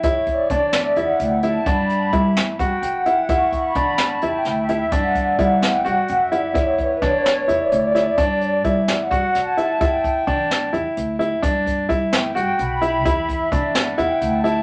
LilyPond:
<<
  \new Staff \with { instrumentName = "Analog synth pad" } { \time 7/8 \key g \lydian \tempo 4 = 129 cis''8 d''4 e''8 fis''8 g''8 a''8 | b''4 r4 g''8 fis''4 | cis'''8 b''4 a''8 g''8 e''4 | fis''8 d''8 fis''8 g''8 fis''8 e''8 d''8 |
cis''8 b'8 cis''4 d''4.~ | d''4 r8 fis''4 a''4 | g''4 r2 r8 | r4. g''4 b''4 |
e''4 r8 fis''8 g''8 a''4 | }
  \new Staff \with { instrumentName = "Grand piano" } { \time 7/8 \key g \lydian e'4 d'4 e'4 e'8 | d'4 e'4 fis'4 e'8 | e'4 d'4 e'4 e'8 | d'4 e'4 fis'4 e'8 |
e'4 d'4 e'4 e'8 | d'4 e'4 fis'4 e'8 | e'4 d'4 e'4 e'8 | d'4 e'4 fis'4 e'8 |
e'4 d'4 e'4 e'8 | }
  \new Staff \with { instrumentName = "Upright bass" } { \clef bass \time 7/8 \key g \lydian e,4 e8 r8 e,16 r16 d,4 | g,4 g8 r8 g,16 r16 fis,4 | e,4 e8 r8 e,16 r16 d,4 | g,4 g8 r8 g,16 r16 fis,4 |
e,4 e8 r8 e,16 r16 d,4 | g,4 g8 r8 g,16 r16 fis,4 | e,4 e8 r8 e,16 r16 d,4 | g,4 g8 r8 g,16 r16 b,,4 |
e,4 e8 r8 e,16 r16 d,4 | }
  \new DrumStaff \with { instrumentName = "Drums" } \drummode { \time 7/8 <hh bd>8 <hh bd>8 <hh bd>8 <hh sn>8 hh8 hh8 hh8 | <hh bd>8 hh8 <hh bd>8 <hh sn>8 <hh bd>8 hh8 hh8 | <hh bd>8 <hh bd>8 <hh bd>8 <hh sn>8 hh8 <hh sn>8 hh8 | <hh bd>8 <hh bd>8 <hh bd>8 <hh sn>8 hh8 hh8 hh8 |
<hh bd>8 <hh bd>8 <hh bd sn>8 <hh sn>8 hh8 hh8 <hh sn>8 | <hh bd>8 hh8 <hh bd>8 <hh sn>8 <hh bd>8 <hh sn>8 hh8 | <hh bd>8 <hh bd>8 <hh bd>8 <hh sn>8 hh8 hh8 hh8 | <hh bd>8 <hh bd>8 <hh bd>8 <hh sn>8 hh8 hh8 hh8 |
<hh bd>8 <hh bd>8 <hh bd>8 <hh sn>8 hh8 hh8 hh8 | }
>>